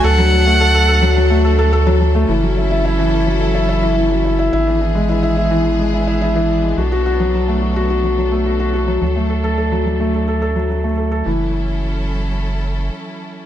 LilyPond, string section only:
\new Staff \with { instrumentName = "String section" } { \time 4/4 \key fis \minor \tempo 4 = 107 << { <fis a'>1 | <fis a'>1 | <e gis'>1 | <fis a'>1~ |
<fis a'>1 | <fis cis' e' a'>1 | } \\ { <a d'>1 | <cis' e'>1 | <b d'>1~ | <b d'>1 |
<a d'>1 | r1 | } >> }